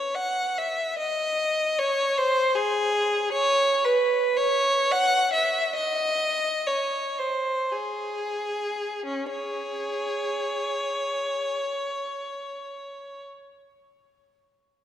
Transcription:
0, 0, Header, 1, 2, 480
1, 0, Start_track
1, 0, Key_signature, 4, "minor"
1, 0, Tempo, 819672
1, 576, Time_signature, 3, 2, 24, 8
1, 1047, Tempo, 769231
1, 2007, Tempo, 800000
1, 2967, Tempo, 834492
1, 3447, Tempo, 920245
1, 3927, Tempo, 1052632
1, 4407, Tempo, 1321586
1, 4887, Tempo, 1142857
1, 6327, Tempo, 1113173
1, 7345, End_track
2, 0, Start_track
2, 0, Title_t, "Violin"
2, 0, Program_c, 0, 40
2, 0, Note_on_c, 0, 73, 90
2, 81, Note_off_c, 0, 73, 0
2, 85, Note_on_c, 0, 78, 101
2, 331, Note_off_c, 0, 78, 0
2, 338, Note_on_c, 0, 76, 92
2, 575, Note_on_c, 0, 75, 109
2, 579, Note_off_c, 0, 76, 0
2, 1036, Note_off_c, 0, 75, 0
2, 1045, Note_on_c, 0, 73, 113
2, 1287, Note_on_c, 0, 72, 115
2, 1288, Note_off_c, 0, 73, 0
2, 1523, Note_on_c, 0, 68, 113
2, 1525, Note_off_c, 0, 72, 0
2, 2005, Note_off_c, 0, 68, 0
2, 2005, Note_on_c, 0, 73, 125
2, 2313, Note_off_c, 0, 73, 0
2, 2320, Note_on_c, 0, 71, 105
2, 2631, Note_on_c, 0, 73, 118
2, 2638, Note_off_c, 0, 71, 0
2, 2959, Note_on_c, 0, 78, 127
2, 2963, Note_off_c, 0, 73, 0
2, 3197, Note_on_c, 0, 76, 107
2, 3202, Note_off_c, 0, 78, 0
2, 3438, Note_off_c, 0, 76, 0
2, 3442, Note_on_c, 0, 75, 117
2, 3915, Note_off_c, 0, 75, 0
2, 3918, Note_on_c, 0, 73, 95
2, 4157, Note_off_c, 0, 73, 0
2, 4157, Note_on_c, 0, 72, 87
2, 4400, Note_on_c, 0, 68, 85
2, 4405, Note_off_c, 0, 72, 0
2, 4884, Note_off_c, 0, 68, 0
2, 4886, Note_on_c, 0, 61, 83
2, 4983, Note_off_c, 0, 61, 0
2, 4985, Note_on_c, 0, 68, 71
2, 4985, Note_on_c, 0, 73, 86
2, 5928, Note_off_c, 0, 68, 0
2, 6654, Note_off_c, 0, 73, 0
2, 7345, End_track
0, 0, End_of_file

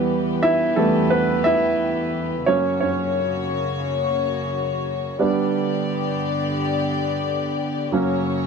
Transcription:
0, 0, Header, 1, 3, 480
1, 0, Start_track
1, 0, Tempo, 681896
1, 1744, Time_signature, 4, 2, 24, 8
1, 5960, End_track
2, 0, Start_track
2, 0, Title_t, "Grand piano"
2, 0, Program_c, 0, 0
2, 0, Control_c, 0, 64, 127
2, 0, Note_on_c, 0, 52, 45
2, 0, Note_on_c, 0, 55, 43
2, 0, Note_on_c, 0, 59, 51
2, 300, Note_on_c, 0, 76, 91
2, 309, Note_on_c, 0, 64, 74
2, 513, Note_off_c, 0, 52, 0
2, 514, Note_off_c, 0, 55, 0
2, 516, Note_off_c, 0, 59, 0
2, 529, Note_off_c, 0, 64, 0
2, 537, Note_on_c, 0, 69, 79
2, 541, Note_on_c, 0, 52, 45
2, 543, Note_on_c, 0, 55, 40
2, 546, Note_on_c, 0, 59, 47
2, 549, Note_off_c, 0, 76, 0
2, 551, Note_on_c, 0, 57, 60
2, 758, Note_off_c, 0, 52, 0
2, 759, Note_off_c, 0, 55, 0
2, 761, Note_off_c, 0, 59, 0
2, 771, Note_off_c, 0, 57, 0
2, 777, Note_on_c, 0, 71, 87
2, 787, Note_off_c, 0, 69, 0
2, 789, Note_on_c, 0, 59, 67
2, 1010, Note_off_c, 0, 59, 0
2, 1014, Note_on_c, 0, 76, 91
2, 1027, Note_off_c, 0, 71, 0
2, 1028, Note_on_c, 0, 64, 68
2, 1718, Note_off_c, 0, 64, 0
2, 1735, Note_on_c, 0, 73, 85
2, 1737, Note_on_c, 0, 54, 47
2, 1743, Note_on_c, 0, 58, 44
2, 1747, Note_on_c, 0, 61, 62
2, 1752, Control_c, 0, 64, 0
2, 1761, Note_off_c, 0, 76, 0
2, 1871, Control_c, 0, 64, 127
2, 1964, Note_off_c, 0, 73, 0
2, 1970, Note_off_c, 0, 61, 0
2, 1974, Note_on_c, 0, 73, 74
2, 1990, Note_on_c, 0, 61, 58
2, 2432, Note_off_c, 0, 54, 0
2, 2435, Note_off_c, 0, 58, 0
2, 2671, Note_off_c, 0, 73, 0
2, 2679, Note_off_c, 0, 61, 0
2, 3653, Note_on_c, 0, 55, 48
2, 3657, Note_on_c, 0, 59, 43
2, 3662, Note_on_c, 0, 62, 50
2, 3674, Control_c, 0, 64, 0
2, 3789, Control_c, 0, 64, 127
2, 4350, Note_off_c, 0, 55, 0
2, 4352, Note_off_c, 0, 59, 0
2, 4355, Note_off_c, 0, 62, 0
2, 5577, Note_on_c, 0, 54, 48
2, 5582, Note_on_c, 0, 58, 46
2, 5585, Note_on_c, 0, 61, 58
2, 5592, Control_c, 0, 64, 0
2, 5697, Control_c, 0, 64, 127
2, 5960, Note_off_c, 0, 54, 0
2, 5960, Note_off_c, 0, 58, 0
2, 5960, Note_off_c, 0, 61, 0
2, 5960, End_track
3, 0, Start_track
3, 0, Title_t, "String section"
3, 0, Program_c, 1, 48
3, 0, Note_on_c, 1, 40, 72
3, 0, Note_on_c, 1, 52, 63
3, 0, Note_on_c, 1, 59, 67
3, 0, Note_on_c, 1, 67, 63
3, 0, Note_on_c, 1, 71, 75
3, 1715, Note_off_c, 1, 52, 0
3, 1725, Note_off_c, 1, 40, 0
3, 1725, Note_off_c, 1, 59, 0
3, 1726, Note_off_c, 1, 71, 0
3, 1727, Note_off_c, 1, 67, 0
3, 1737, Note_on_c, 1, 73, 79
3, 1740, Note_on_c, 1, 49, 64
3, 1741, Note_on_c, 1, 58, 64
3, 1742, Note_on_c, 1, 42, 74
3, 1742, Note_on_c, 1, 66, 66
3, 3641, Note_off_c, 1, 73, 0
3, 3643, Note_off_c, 1, 42, 0
3, 3643, Note_off_c, 1, 49, 0
3, 3643, Note_off_c, 1, 58, 0
3, 3644, Note_off_c, 1, 66, 0
3, 3661, Note_on_c, 1, 59, 68
3, 3662, Note_on_c, 1, 67, 68
3, 3664, Note_on_c, 1, 50, 65
3, 3665, Note_on_c, 1, 43, 72
3, 3667, Note_on_c, 1, 74, 79
3, 5563, Note_off_c, 1, 59, 0
3, 5564, Note_off_c, 1, 67, 0
3, 5565, Note_off_c, 1, 43, 0
3, 5565, Note_off_c, 1, 50, 0
3, 5566, Note_off_c, 1, 74, 0
3, 5582, Note_on_c, 1, 66, 69
3, 5582, Note_on_c, 1, 73, 79
3, 5583, Note_on_c, 1, 61, 69
3, 5585, Note_on_c, 1, 49, 69
3, 5587, Note_on_c, 1, 42, 74
3, 5960, Note_off_c, 1, 42, 0
3, 5960, Note_off_c, 1, 49, 0
3, 5960, Note_off_c, 1, 61, 0
3, 5960, Note_off_c, 1, 66, 0
3, 5960, Note_off_c, 1, 73, 0
3, 5960, End_track
0, 0, End_of_file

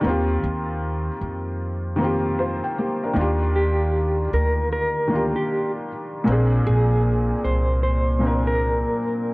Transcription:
0, 0, Header, 1, 4, 480
1, 0, Start_track
1, 0, Key_signature, -3, "major"
1, 0, Tempo, 779221
1, 22, Time_signature, 4, 2, 24, 8
1, 5752, End_track
2, 0, Start_track
2, 0, Title_t, "Clean electric guitar"
2, 0, Program_c, 0, 27
2, 2190, Note_on_c, 0, 67, 74
2, 2642, Note_off_c, 0, 67, 0
2, 2670, Note_on_c, 0, 70, 70
2, 2882, Note_off_c, 0, 70, 0
2, 2910, Note_on_c, 0, 70, 90
2, 3278, Note_off_c, 0, 70, 0
2, 3301, Note_on_c, 0, 67, 75
2, 3516, Note_off_c, 0, 67, 0
2, 4109, Note_on_c, 0, 68, 67
2, 4561, Note_off_c, 0, 68, 0
2, 4588, Note_on_c, 0, 72, 83
2, 4801, Note_off_c, 0, 72, 0
2, 4825, Note_on_c, 0, 72, 87
2, 5195, Note_off_c, 0, 72, 0
2, 5221, Note_on_c, 0, 70, 89
2, 5752, Note_off_c, 0, 70, 0
2, 5752, End_track
3, 0, Start_track
3, 0, Title_t, "Felt piano"
3, 0, Program_c, 1, 0
3, 0, Control_c, 1, 64, 127
3, 6, Note_on_c, 1, 51, 83
3, 18, Note_on_c, 1, 58, 76
3, 30, Note_on_c, 1, 60, 76
3, 31, Control_c, 1, 64, 0
3, 43, Note_on_c, 1, 65, 81
3, 55, Note_on_c, 1, 67, 89
3, 152, Control_c, 1, 64, 127
3, 668, Note_off_c, 1, 51, 0
3, 674, Note_off_c, 1, 58, 0
3, 680, Note_off_c, 1, 60, 0
3, 686, Note_off_c, 1, 65, 0
3, 692, Note_off_c, 1, 67, 0
3, 1208, Note_on_c, 1, 51, 83
3, 1222, Note_on_c, 1, 58, 73
3, 1232, Note_on_c, 1, 60, 74
3, 1246, Note_on_c, 1, 65, 74
3, 1257, Note_on_c, 1, 67, 92
3, 1462, Note_off_c, 1, 58, 0
3, 1462, Note_off_c, 1, 65, 0
3, 1467, Note_off_c, 1, 60, 0
3, 1471, Note_on_c, 1, 65, 62
3, 1472, Note_on_c, 1, 72, 63
3, 1479, Note_off_c, 1, 67, 0
3, 1612, Note_off_c, 1, 72, 0
3, 1625, Note_on_c, 1, 79, 68
3, 1687, Note_off_c, 1, 51, 0
3, 1695, Note_off_c, 1, 65, 0
3, 1713, Note_on_c, 1, 67, 69
3, 1717, Note_on_c, 1, 58, 59
3, 1856, Note_off_c, 1, 67, 0
3, 1857, Note_off_c, 1, 58, 0
3, 1868, Note_on_c, 1, 70, 62
3, 1871, Note_on_c, 1, 62, 57
3, 1923, Note_off_c, 1, 79, 0
3, 1929, Note_on_c, 1, 51, 85
3, 1940, Note_on_c, 1, 58, 73
3, 1942, Note_off_c, 1, 62, 0
3, 1950, Control_c, 1, 64, 0
3, 1951, Note_on_c, 1, 62, 83
3, 1963, Note_on_c, 1, 65, 74
3, 1975, Note_on_c, 1, 67, 93
3, 2067, Control_c, 1, 64, 127
3, 2091, Note_off_c, 1, 70, 0
3, 2589, Note_off_c, 1, 51, 0
3, 2595, Note_off_c, 1, 58, 0
3, 2600, Note_off_c, 1, 62, 0
3, 2606, Note_off_c, 1, 65, 0
3, 2612, Note_off_c, 1, 67, 0
3, 3127, Note_on_c, 1, 51, 72
3, 3139, Note_on_c, 1, 58, 69
3, 3149, Note_on_c, 1, 62, 66
3, 3160, Note_on_c, 1, 65, 65
3, 3174, Note_on_c, 1, 67, 83
3, 3607, Note_off_c, 1, 51, 0
3, 3613, Note_off_c, 1, 58, 0
3, 3618, Note_off_c, 1, 62, 0
3, 3623, Note_off_c, 1, 65, 0
3, 3630, Note_off_c, 1, 67, 0
3, 3845, Note_on_c, 1, 46, 90
3, 3858, Note_on_c, 1, 58, 82
3, 3870, Note_on_c, 1, 60, 81
3, 3871, Control_c, 1, 64, 0
3, 3881, Note_on_c, 1, 62, 78
3, 3892, Note_on_c, 1, 68, 93
3, 3965, Control_c, 1, 64, 127
3, 4507, Note_off_c, 1, 46, 0
3, 4514, Note_off_c, 1, 58, 0
3, 4519, Note_off_c, 1, 60, 0
3, 4525, Note_off_c, 1, 62, 0
3, 4531, Note_off_c, 1, 68, 0
3, 5046, Note_on_c, 1, 46, 70
3, 5057, Note_on_c, 1, 58, 68
3, 5070, Note_on_c, 1, 60, 67
3, 5080, Note_on_c, 1, 62, 65
3, 5094, Note_on_c, 1, 70, 77
3, 5527, Note_off_c, 1, 46, 0
3, 5532, Note_off_c, 1, 58, 0
3, 5539, Note_off_c, 1, 60, 0
3, 5543, Note_off_c, 1, 62, 0
3, 5550, Note_off_c, 1, 70, 0
3, 5752, End_track
4, 0, Start_track
4, 0, Title_t, "Upright bass"
4, 0, Program_c, 2, 32
4, 27, Note_on_c, 2, 39, 97
4, 225, Note_off_c, 2, 39, 0
4, 269, Note_on_c, 2, 39, 93
4, 666, Note_off_c, 2, 39, 0
4, 748, Note_on_c, 2, 41, 79
4, 1596, Note_off_c, 2, 41, 0
4, 1947, Note_on_c, 2, 39, 105
4, 2640, Note_off_c, 2, 39, 0
4, 2667, Note_on_c, 2, 38, 91
4, 3275, Note_off_c, 2, 38, 0
4, 3865, Note_on_c, 2, 34, 108
4, 4064, Note_off_c, 2, 34, 0
4, 4108, Note_on_c, 2, 34, 112
4, 4506, Note_off_c, 2, 34, 0
4, 4590, Note_on_c, 2, 36, 89
4, 5437, Note_off_c, 2, 36, 0
4, 5752, End_track
0, 0, End_of_file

